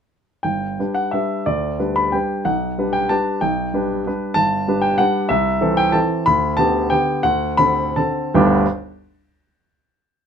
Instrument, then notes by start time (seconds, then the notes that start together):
grand piano
0.43 G1 G5
0.79 G3 D4 B4
0.95 F#5
1.11 G3 D4 B4 E5
1.46 D2 D5
1.79 G3 D4 B4
1.96 B5
2.12 G3 D4 B4 G5
2.45 B1 F#5
2.78 G3 D4 B4
2.93 G5
3.09 G3 D4 B4 A5
3.41 B1 G5
3.74 G3 D4 B4
4.07 G3 D4 B4
4.34 G1 A5
4.68 G3 D4 B4
4.82 G5
4.98 G3 D4 B4 F#5
5.29 C2 E5
5.61 E3 C4 A4
5.77 G5
5.92 E3 C4 A4 A5
6.26 D2 B5
6.57 D3 B3 G4 A5
6.90 D3 B3 G4 G5
7.23 D2 F#5
7.57 D3 C4 A4 B5
7.96 D3 C4 A4 A5
8.35 G1 D2 G3 B3 D4 G4 G5